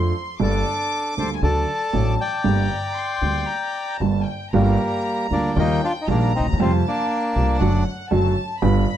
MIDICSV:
0, 0, Header, 1, 5, 480
1, 0, Start_track
1, 0, Key_signature, -2, "minor"
1, 0, Tempo, 512821
1, 379, Time_signature, 4, 2, 24, 8
1, 8397, End_track
2, 0, Start_track
2, 0, Title_t, "Violin section"
2, 0, Program_c, 0, 48
2, 0, Note_on_c, 0, 84, 83
2, 373, Note_off_c, 0, 84, 0
2, 377, Note_on_c, 0, 86, 102
2, 1232, Note_off_c, 0, 86, 0
2, 1272, Note_on_c, 0, 80, 54
2, 1335, Note_off_c, 0, 80, 0
2, 1340, Note_on_c, 0, 81, 91
2, 2288, Note_on_c, 0, 82, 86
2, 2289, Note_off_c, 0, 81, 0
2, 2733, Note_off_c, 0, 82, 0
2, 2759, Note_on_c, 0, 84, 75
2, 3245, Note_on_c, 0, 82, 82
2, 3247, Note_off_c, 0, 84, 0
2, 3739, Note_off_c, 0, 82, 0
2, 3740, Note_on_c, 0, 81, 72
2, 3976, Note_on_c, 0, 79, 64
2, 3987, Note_off_c, 0, 81, 0
2, 4227, Note_off_c, 0, 79, 0
2, 4232, Note_on_c, 0, 82, 94
2, 5161, Note_off_c, 0, 82, 0
2, 5198, Note_on_c, 0, 79, 91
2, 5647, Note_off_c, 0, 79, 0
2, 5673, Note_on_c, 0, 82, 88
2, 6160, Note_off_c, 0, 82, 0
2, 6166, Note_on_c, 0, 81, 100
2, 7116, Note_off_c, 0, 81, 0
2, 7116, Note_on_c, 0, 78, 88
2, 7592, Note_on_c, 0, 81, 96
2, 7593, Note_off_c, 0, 78, 0
2, 8033, Note_off_c, 0, 81, 0
2, 8061, Note_on_c, 0, 83, 103
2, 8397, Note_off_c, 0, 83, 0
2, 8397, End_track
3, 0, Start_track
3, 0, Title_t, "Bandoneon"
3, 0, Program_c, 1, 23
3, 399, Note_on_c, 1, 69, 69
3, 414, Note_on_c, 1, 62, 55
3, 1070, Note_off_c, 1, 69, 0
3, 1077, Note_off_c, 1, 62, 0
3, 1107, Note_on_c, 1, 72, 70
3, 1114, Note_on_c, 1, 69, 60
3, 1212, Note_off_c, 1, 72, 0
3, 1218, Note_off_c, 1, 69, 0
3, 1340, Note_on_c, 1, 74, 87
3, 1349, Note_on_c, 1, 69, 68
3, 2014, Note_off_c, 1, 74, 0
3, 2018, Note_off_c, 1, 69, 0
3, 2067, Note_on_c, 1, 79, 89
3, 2071, Note_on_c, 1, 74, 67
3, 3714, Note_off_c, 1, 79, 0
3, 3715, Note_off_c, 1, 74, 0
3, 4252, Note_on_c, 1, 58, 86
3, 4257, Note_on_c, 1, 55, 62
3, 4930, Note_off_c, 1, 58, 0
3, 4933, Note_off_c, 1, 55, 0
3, 4984, Note_on_c, 1, 58, 74
3, 4986, Note_on_c, 1, 62, 90
3, 5196, Note_off_c, 1, 58, 0
3, 5220, Note_off_c, 1, 62, 0
3, 5229, Note_on_c, 1, 58, 77
3, 5236, Note_on_c, 1, 63, 105
3, 5439, Note_off_c, 1, 58, 0
3, 5443, Note_off_c, 1, 63, 0
3, 5465, Note_on_c, 1, 62, 74
3, 5475, Note_on_c, 1, 65, 101
3, 5541, Note_off_c, 1, 62, 0
3, 5549, Note_off_c, 1, 65, 0
3, 5632, Note_on_c, 1, 63, 68
3, 5687, Note_off_c, 1, 63, 0
3, 5704, Note_on_c, 1, 58, 68
3, 5712, Note_on_c, 1, 62, 84
3, 5918, Note_off_c, 1, 58, 0
3, 5922, Note_off_c, 1, 62, 0
3, 5944, Note_on_c, 1, 60, 69
3, 5955, Note_on_c, 1, 63, 89
3, 6048, Note_off_c, 1, 60, 0
3, 6056, Note_off_c, 1, 63, 0
3, 6188, Note_on_c, 1, 60, 79
3, 6201, Note_on_c, 1, 65, 94
3, 6290, Note_off_c, 1, 60, 0
3, 6300, Note_off_c, 1, 65, 0
3, 6431, Note_on_c, 1, 58, 69
3, 6442, Note_on_c, 1, 62, 96
3, 7092, Note_off_c, 1, 58, 0
3, 7336, Note_off_c, 1, 62, 0
3, 8397, End_track
4, 0, Start_track
4, 0, Title_t, "Grand piano"
4, 0, Program_c, 2, 0
4, 0, Note_on_c, 2, 41, 74
4, 0, Note_on_c, 2, 53, 69
4, 0, Note_on_c, 2, 57, 58
4, 0, Note_on_c, 2, 62, 58
4, 0, Note_on_c, 2, 69, 72
4, 102, Note_off_c, 2, 57, 0
4, 103, Note_off_c, 2, 41, 0
4, 103, Note_off_c, 2, 53, 0
4, 104, Note_off_c, 2, 69, 0
4, 105, Note_off_c, 2, 62, 0
4, 371, Note_on_c, 2, 43, 76
4, 372, Note_on_c, 2, 55, 68
4, 373, Note_on_c, 2, 31, 80
4, 373, Note_on_c, 2, 58, 59
4, 375, Note_on_c, 2, 69, 72
4, 376, Note_on_c, 2, 62, 64
4, 575, Note_off_c, 2, 43, 0
4, 576, Note_off_c, 2, 31, 0
4, 576, Note_off_c, 2, 55, 0
4, 576, Note_off_c, 2, 58, 0
4, 577, Note_off_c, 2, 69, 0
4, 578, Note_off_c, 2, 62, 0
4, 1099, Note_on_c, 2, 50, 51
4, 1099, Note_on_c, 2, 55, 42
4, 1100, Note_on_c, 2, 38, 51
4, 1101, Note_on_c, 2, 58, 39
4, 1101, Note_on_c, 2, 62, 39
4, 1104, Note_on_c, 2, 69, 45
4, 1298, Note_off_c, 2, 38, 0
4, 1298, Note_off_c, 2, 50, 0
4, 1298, Note_off_c, 2, 55, 0
4, 1299, Note_off_c, 2, 58, 0
4, 1299, Note_off_c, 2, 62, 0
4, 1300, Note_off_c, 2, 69, 0
4, 1334, Note_on_c, 2, 54, 59
4, 1334, Note_on_c, 2, 57, 59
4, 1335, Note_on_c, 2, 38, 69
4, 1337, Note_on_c, 2, 69, 69
4, 1338, Note_on_c, 2, 62, 60
4, 1339, Note_on_c, 2, 50, 76
4, 1533, Note_off_c, 2, 57, 0
4, 1534, Note_off_c, 2, 38, 0
4, 1534, Note_off_c, 2, 54, 0
4, 1535, Note_off_c, 2, 69, 0
4, 1536, Note_off_c, 2, 50, 0
4, 1536, Note_off_c, 2, 62, 0
4, 1806, Note_on_c, 2, 54, 62
4, 1809, Note_on_c, 2, 33, 76
4, 1809, Note_on_c, 2, 62, 56
4, 1810, Note_on_c, 2, 57, 59
4, 1811, Note_on_c, 2, 45, 73
4, 1815, Note_on_c, 2, 69, 65
4, 2008, Note_off_c, 2, 54, 0
4, 2010, Note_off_c, 2, 33, 0
4, 2010, Note_off_c, 2, 57, 0
4, 2010, Note_off_c, 2, 62, 0
4, 2011, Note_off_c, 2, 45, 0
4, 2013, Note_off_c, 2, 69, 0
4, 2283, Note_on_c, 2, 50, 65
4, 2285, Note_on_c, 2, 43, 76
4, 2285, Note_on_c, 2, 58, 61
4, 2287, Note_on_c, 2, 31, 72
4, 2287, Note_on_c, 2, 55, 64
4, 2289, Note_on_c, 2, 67, 78
4, 2486, Note_off_c, 2, 50, 0
4, 2487, Note_off_c, 2, 43, 0
4, 2487, Note_off_c, 2, 58, 0
4, 2488, Note_off_c, 2, 31, 0
4, 2488, Note_off_c, 2, 55, 0
4, 2489, Note_off_c, 2, 67, 0
4, 3011, Note_on_c, 2, 50, 50
4, 3014, Note_on_c, 2, 55, 38
4, 3014, Note_on_c, 2, 58, 39
4, 3015, Note_on_c, 2, 38, 51
4, 3017, Note_on_c, 2, 67, 49
4, 3215, Note_off_c, 2, 38, 0
4, 3215, Note_off_c, 2, 50, 0
4, 3215, Note_off_c, 2, 55, 0
4, 3215, Note_off_c, 2, 58, 0
4, 3217, Note_off_c, 2, 67, 0
4, 3754, Note_on_c, 2, 31, 67
4, 3754, Note_on_c, 2, 43, 71
4, 3754, Note_on_c, 2, 50, 56
4, 3755, Note_on_c, 2, 67, 64
4, 3757, Note_on_c, 2, 55, 57
4, 3757, Note_on_c, 2, 58, 50
4, 3955, Note_off_c, 2, 31, 0
4, 3955, Note_off_c, 2, 43, 0
4, 3955, Note_off_c, 2, 50, 0
4, 3956, Note_off_c, 2, 55, 0
4, 3956, Note_off_c, 2, 67, 0
4, 3957, Note_off_c, 2, 58, 0
4, 4245, Note_on_c, 2, 55, 66
4, 4247, Note_on_c, 2, 43, 83
4, 4247, Note_on_c, 2, 50, 79
4, 4249, Note_on_c, 2, 31, 88
4, 4250, Note_on_c, 2, 58, 72
4, 4253, Note_on_c, 2, 65, 83
4, 4443, Note_off_c, 2, 55, 0
4, 4444, Note_off_c, 2, 43, 0
4, 4444, Note_off_c, 2, 50, 0
4, 4445, Note_off_c, 2, 31, 0
4, 4445, Note_off_c, 2, 58, 0
4, 4447, Note_off_c, 2, 65, 0
4, 4968, Note_on_c, 2, 50, 61
4, 4969, Note_on_c, 2, 38, 52
4, 4972, Note_on_c, 2, 55, 46
4, 4973, Note_on_c, 2, 58, 44
4, 4973, Note_on_c, 2, 65, 55
4, 5166, Note_off_c, 2, 38, 0
4, 5166, Note_off_c, 2, 50, 0
4, 5167, Note_off_c, 2, 55, 0
4, 5168, Note_off_c, 2, 58, 0
4, 5168, Note_off_c, 2, 65, 0
4, 5209, Note_on_c, 2, 39, 90
4, 5211, Note_on_c, 2, 51, 88
4, 5212, Note_on_c, 2, 55, 65
4, 5212, Note_on_c, 2, 58, 63
4, 5215, Note_on_c, 2, 65, 75
4, 5407, Note_off_c, 2, 39, 0
4, 5408, Note_off_c, 2, 51, 0
4, 5408, Note_off_c, 2, 55, 0
4, 5408, Note_off_c, 2, 58, 0
4, 5409, Note_off_c, 2, 65, 0
4, 5690, Note_on_c, 2, 55, 65
4, 5692, Note_on_c, 2, 46, 87
4, 5692, Note_on_c, 2, 51, 64
4, 5694, Note_on_c, 2, 34, 86
4, 5696, Note_on_c, 2, 58, 64
4, 5696, Note_on_c, 2, 65, 79
4, 5889, Note_off_c, 2, 55, 0
4, 5890, Note_off_c, 2, 46, 0
4, 5890, Note_off_c, 2, 51, 0
4, 5891, Note_off_c, 2, 34, 0
4, 5892, Note_off_c, 2, 58, 0
4, 5892, Note_off_c, 2, 65, 0
4, 5994, Note_on_c, 2, 38, 55
4, 6049, Note_off_c, 2, 38, 0
4, 6058, Note_on_c, 2, 39, 65
4, 6111, Note_off_c, 2, 39, 0
4, 6115, Note_on_c, 2, 40, 71
4, 6170, Note_off_c, 2, 40, 0
4, 6175, Note_on_c, 2, 55, 74
4, 6177, Note_on_c, 2, 41, 91
4, 6178, Note_on_c, 2, 48, 76
4, 6178, Note_on_c, 2, 53, 90
4, 6181, Note_on_c, 2, 57, 71
4, 6182, Note_on_c, 2, 65, 84
4, 6371, Note_off_c, 2, 55, 0
4, 6372, Note_off_c, 2, 41, 0
4, 6372, Note_off_c, 2, 48, 0
4, 6372, Note_off_c, 2, 53, 0
4, 6374, Note_off_c, 2, 57, 0
4, 6374, Note_off_c, 2, 65, 0
4, 6886, Note_on_c, 2, 55, 49
4, 6887, Note_on_c, 2, 48, 61
4, 6888, Note_on_c, 2, 36, 60
4, 6890, Note_on_c, 2, 57, 47
4, 6892, Note_on_c, 2, 65, 53
4, 7081, Note_off_c, 2, 55, 0
4, 7082, Note_off_c, 2, 36, 0
4, 7082, Note_off_c, 2, 48, 0
4, 7083, Note_off_c, 2, 57, 0
4, 7085, Note_off_c, 2, 65, 0
4, 7117, Note_on_c, 2, 50, 70
4, 7117, Note_on_c, 2, 54, 80
4, 7120, Note_on_c, 2, 42, 86
4, 7120, Note_on_c, 2, 57, 65
4, 7124, Note_on_c, 2, 66, 87
4, 7317, Note_off_c, 2, 50, 0
4, 7317, Note_off_c, 2, 54, 0
4, 7318, Note_off_c, 2, 42, 0
4, 7318, Note_off_c, 2, 57, 0
4, 7320, Note_off_c, 2, 66, 0
4, 7589, Note_on_c, 2, 50, 72
4, 7592, Note_on_c, 2, 54, 90
4, 7592, Note_on_c, 2, 66, 76
4, 7593, Note_on_c, 2, 42, 85
4, 7593, Note_on_c, 2, 57, 66
4, 7790, Note_off_c, 2, 50, 0
4, 7792, Note_off_c, 2, 42, 0
4, 7792, Note_off_c, 2, 54, 0
4, 7792, Note_off_c, 2, 57, 0
4, 7792, Note_off_c, 2, 66, 0
4, 8068, Note_on_c, 2, 50, 77
4, 8069, Note_on_c, 2, 55, 72
4, 8069, Note_on_c, 2, 59, 74
4, 8070, Note_on_c, 2, 43, 96
4, 8071, Note_on_c, 2, 31, 94
4, 8072, Note_on_c, 2, 65, 92
4, 8266, Note_off_c, 2, 50, 0
4, 8267, Note_off_c, 2, 31, 0
4, 8267, Note_off_c, 2, 43, 0
4, 8267, Note_off_c, 2, 55, 0
4, 8267, Note_off_c, 2, 59, 0
4, 8268, Note_off_c, 2, 65, 0
4, 8397, End_track
5, 0, Start_track
5, 0, Title_t, "Upright bass"
5, 0, Program_c, 3, 32
5, 0, Note_on_c, 3, 41, 84
5, 103, Note_off_c, 3, 41, 0
5, 379, Note_on_c, 3, 31, 84
5, 579, Note_off_c, 3, 31, 0
5, 1098, Note_on_c, 3, 38, 53
5, 1297, Note_off_c, 3, 38, 0
5, 1334, Note_on_c, 3, 38, 77
5, 1534, Note_off_c, 3, 38, 0
5, 1810, Note_on_c, 3, 33, 85
5, 2010, Note_off_c, 3, 33, 0
5, 2294, Note_on_c, 3, 31, 93
5, 2491, Note_off_c, 3, 31, 0
5, 3010, Note_on_c, 3, 38, 51
5, 3213, Note_off_c, 3, 38, 0
5, 3747, Note_on_c, 3, 31, 74
5, 3951, Note_off_c, 3, 31, 0
5, 4241, Note_on_c, 3, 31, 96
5, 4441, Note_off_c, 3, 31, 0
5, 4967, Note_on_c, 3, 38, 66
5, 5165, Note_off_c, 3, 38, 0
5, 5209, Note_on_c, 3, 39, 98
5, 5407, Note_off_c, 3, 39, 0
5, 5688, Note_on_c, 3, 34, 94
5, 5888, Note_off_c, 3, 34, 0
5, 5987, Note_on_c, 3, 38, 55
5, 6043, Note_off_c, 3, 38, 0
5, 6048, Note_on_c, 3, 39, 62
5, 6103, Note_off_c, 3, 39, 0
5, 6109, Note_on_c, 3, 40, 73
5, 6166, Note_off_c, 3, 40, 0
5, 6174, Note_on_c, 3, 41, 101
5, 6370, Note_off_c, 3, 41, 0
5, 6885, Note_on_c, 3, 36, 68
5, 7081, Note_off_c, 3, 36, 0
5, 7120, Note_on_c, 3, 30, 104
5, 7318, Note_off_c, 3, 30, 0
5, 7598, Note_on_c, 3, 30, 87
5, 7795, Note_off_c, 3, 30, 0
5, 8072, Note_on_c, 3, 31, 101
5, 8268, Note_off_c, 3, 31, 0
5, 8397, End_track
0, 0, End_of_file